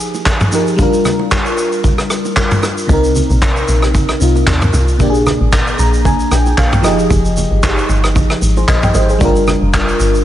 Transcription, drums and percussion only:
0.00 shaker
0.14 low bongo, shaker
0.26 kick, clap, high bongo, shaker
0.41 mid tom, shaker
0.52 high bongo, low bongo, shaker
0.67 shaker
0.79 kick, low conga, shaker
0.93 shaker
1.05 cross-stick, low bongo, low conga, shaker
1.19 low bongo
1.31 kick, clap, high bongo, shaker
1.46 shaker
1.58 shaker
1.72 shaker
1.84 kick, low conga, shaker
1.98 cross-stick, shaker
2.10 cross-stick, shaker
2.25 low bongo, shaker
2.37 kick, clap, high bongo, shaker
2.51 mid tom, shaker
2.63 cross-stick, high bongo, low bongo, shaker
2.78 shaker
2.89 kick, low conga, shaker
3.04 shaker
3.16 low conga, shaker
3.30 shaker
3.42 kick, clap, high bongo, shaker
3.56 shaker
3.68 shaker
3.82 cross-stick, shaker
3.94 kick, low conga, shaker
4.09 cross-stick, shaker
4.21 shaker
4.36 low bongo, shaker
4.47 kick, clap, high bongo, shaker
4.62 mid tom, shaker
4.73 high bongo, low bongo, shaker
4.88 shaker
5.00 kick, low conga, shaker
5.14 shaker
5.26 cross-stick, low conga, shaker
5.52 kick, clap, high bongo, shaker
5.67 shaker
5.79 shaker
5.94 shaker
6.05 kick, low conga, shaker
6.20 shaker
6.32 cross-stick, shaker
6.46 low bongo, shaker
6.58 kick, clap, high bongo, shaker
6.72 mid tom, shaker
6.84 cross-stick, high bongo, low bongo, shaker
6.99 shaker
7.10 kick, low conga, shaker
7.25 shaker
7.37 low conga, shaker
7.63 kick, clap, high bongo, shaker
7.78 shaker
7.89 shaker
8.04 cross-stick, shaker
8.15 kick, low conga, shaker
8.30 cross-stick, shaker
8.42 shaker
8.57 low bongo, shaker
8.68 kick, clap, high bongo, shaker
8.83 mid tom, shaker
8.95 high bongo, low bongo, shaker
9.09 shaker
9.21 kick, low conga, shaker
9.36 shaker
9.47 cross-stick, low conga, shaker
9.74 kick, clap, high bongo, shaker
9.88 shaker
10.00 shaker
10.15 shaker

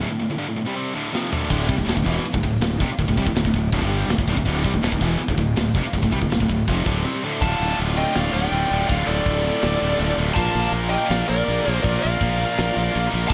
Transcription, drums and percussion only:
1.15 snare
1.33 floor tom
1.50 kick, crash
1.69 kick, ride
1.78 kick
1.88 snare, ride
1.97 kick
2.06 kick, ride
2.25 ride
2.34 kick
2.43 kick, ride
2.61 snare, ride
2.80 kick, snare, ride
2.98 kick, ride
3.08 kick
3.17 kick, ride
3.27 kick
3.36 snare, ride
3.45 kick
3.54 kick, ride
3.72 kick, ride
3.82 kick
3.90 ride
4.09 snare, ride
4.18 kick
4.27 kick, snare, ride
4.37 kick
4.45 kick, ride
4.64 kick, ride
4.74 kick
4.83 snare, ride
4.92 kick
5.01 kick, ride
5.19 ride
5.28 kick
5.37 kick, ride
5.56 snare, ride
5.75 kick, snare, ride
5.93 kick, ride
6.03 kick
6.12 kick, ride
6.22 kick
6.31 snare, ride
6.40 kick
6.49 kick, ride
6.68 kick, ride
6.86 kick, ride
7.42 kick, crash
7.61 crash
7.79 crash
7.97 crash
8.15 snare, crash
8.34 crash
8.53 crash
8.72 crash
8.89 kick, crash
9.09 crash
9.26 kick, crash
9.44 crash
9.62 snare, crash
9.80 crash
9.98 crash
10.17 crash
10.35 kick, crash
10.55 crash
10.73 crash
10.91 crash
11.10 snare, crash
11.28 crash
11.46 crash
11.66 crash
11.84 kick, crash
12.04 crash
12.21 kick, crash
12.40 crash
12.58 snare, crash
12.76 crash
12.94 crash
13.11 crash
13.29 kick, crash

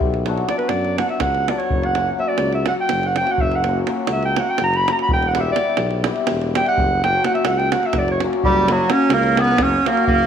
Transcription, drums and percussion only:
0.00 davul low
0.14 davul high
0.26 davul high
0.38 davul high
0.49 davul high
0.59 davul high
0.69 davul high
0.85 davul high
0.98 davul high
1.09 davul high
1.20 davul high, davul low
1.35 davul high
1.48 davul high
1.60 davul high
1.70 davul low
1.83 davul high
1.95 davul high
2.38 davul high
2.53 davul high
2.66 davul high
2.89 davul high
3.03 davul high
3.16 davul high
3.27 davul high
3.38 davul low
3.52 davul high
3.64 davul high
3.87 davul high
4.07 davul high
4.23 davul high
4.36 davul high
4.58 davul high
4.74 davul high
4.88 davul high
4.99 davul high
5.09 davul low
5.22 davul high
5.35 davul high
5.56 davul high
5.77 davul high
5.91 davul high
6.04 davul high
6.16 davul high
6.27 davul high
6.41 davul high
6.55 davul high
6.66 davul high
6.77 davul low
7.04 davul high
7.24 davul high
7.35 davul high
7.45 davul high
7.60 davul high
7.72 davul high
7.83 davul high
7.93 davul high, davul low
8.08 davul high
8.20 davul high
8.33 davul high
8.43 davul low
8.68 davul high
8.90 davul high
9.10 davul high
9.23 davul high
9.37 davul high
9.58 davul high, davul low
9.86 davul high
9.97 davul high
10.07 davul low

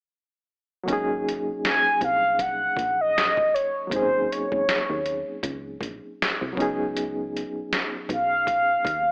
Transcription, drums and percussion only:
0.88 kick, closed hi-hat
1.29 closed hi-hat
1.65 snare, closed hi-hat
2.01 kick, closed hi-hat
2.39 kick, closed hi-hat
2.77 kick, closed hi-hat
3.18 snare, closed hi-hat
3.37 kick
3.56 closed hi-hat
3.91 kick, closed hi-hat
4.32 closed hi-hat
4.52 kick
4.69 snare, closed hi-hat
5.06 closed hi-hat
5.43 kick, closed hi-hat
5.81 kick, closed hi-hat
6.22 snare, closed hi-hat
6.57 kick, closed hi-hat
6.97 closed hi-hat
7.37 closed hi-hat
7.73 snare, closed hi-hat
8.09 kick, closed hi-hat
8.47 kick, closed hi-hat
8.85 kick, closed hi-hat

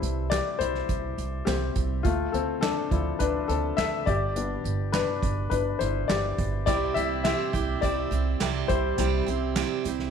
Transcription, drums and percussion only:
0.03 closed hi-hat
0.31 snare, clap, closed hi-hat
0.61 closed hi-hat
0.75 snare
0.89 kick, closed hi-hat
1.18 closed hi-hat
1.47 snare, clap, closed hi-hat
1.75 kick, closed hi-hat
2.05 kick, closed hi-hat
2.34 closed hi-hat
2.62 snare, clap, closed hi-hat
2.91 kick, closed hi-hat
3.20 kick, closed hi-hat
3.49 closed hi-hat
3.78 snare, clap, closed hi-hat
4.07 kick, closed hi-hat
4.36 closed hi-hat
4.65 closed hi-hat
4.93 snare, clap, closed hi-hat
5.23 kick, closed hi-hat
5.51 kick, closed hi-hat
5.81 closed hi-hat
6.09 snare, clap, closed hi-hat
6.38 kick, closed hi-hat
6.67 kick, closed hi-hat
6.96 closed hi-hat
7.25 snare, clap, closed hi-hat
7.54 kick, closed hi-hat
7.83 kick, closed hi-hat
8.12 closed hi-hat
8.40 snare, clap, closed hi-hat
8.69 kick, closed hi-hat
8.98 closed hi-hat
9.28 closed hi-hat
9.56 snare, clap, closed hi-hat
9.85 closed hi-hat
9.99 snare

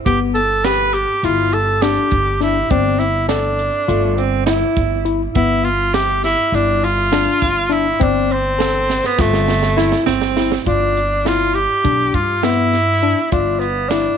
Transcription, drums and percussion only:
0.06 kick, closed hi-hat
0.35 closed hi-hat
0.65 snare, closed hi-hat
0.94 closed hi-hat
1.24 closed hi-hat
1.53 closed hi-hat
1.82 snare, closed hi-hat
2.11 kick, closed hi-hat
2.41 snare, closed hi-hat
2.70 kick, closed hi-hat
3.01 closed hi-hat
3.29 snare, closed hi-hat
3.59 closed hi-hat
3.89 closed hi-hat
4.18 closed hi-hat
4.47 snare, closed hi-hat
4.77 kick, closed hi-hat
5.06 closed hi-hat
5.35 kick, closed hi-hat
5.65 closed hi-hat
5.94 snare, closed hi-hat
6.24 snare, closed hi-hat
6.54 closed hi-hat
6.84 closed hi-hat
7.13 snare, closed hi-hat
7.42 kick, snare, closed hi-hat
7.72 closed hi-hat
8.01 kick, closed hi-hat
8.31 closed hi-hat
8.60 snare, closed hi-hat
8.90 snare
9.04 snare
9.18 kick, snare
9.34 snare
9.48 snare
9.63 snare
9.78 snare
9.92 snare
10.07 snare
10.22 snare
10.37 snare
10.52 snare
10.66 kick, closed hi-hat
10.97 closed hi-hat
11.26 snare, closed hi-hat
11.55 closed hi-hat
11.85 kick, closed hi-hat
12.14 kick, closed hi-hat
12.43 snare, closed hi-hat
12.73 snare, closed hi-hat
13.03 closed hi-hat
13.32 kick, closed hi-hat
13.61 closed hi-hat
13.91 snare, closed hi-hat

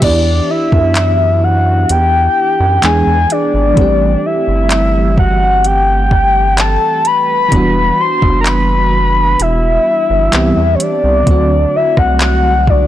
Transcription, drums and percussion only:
0.02 kick, closed hi-hat, crash
0.72 kick
0.95 clap, closed hi-hat
1.89 closed hi-hat
2.83 clap, closed hi-hat
3.30 closed hi-hat
3.77 kick, closed hi-hat
4.70 clap, closed hi-hat
5.18 kick
5.64 closed hi-hat
6.11 kick
6.58 clap, closed hi-hat
7.05 closed hi-hat
7.52 kick, closed hi-hat
8.22 kick
8.46 clap, closed hi-hat
9.40 closed hi-hat
10.33 clap, closed hi-hat
10.80 closed hi-hat
11.27 kick, closed hi-hat
11.97 kick, cross-stick
12.21 clap, closed hi-hat
12.67 kick

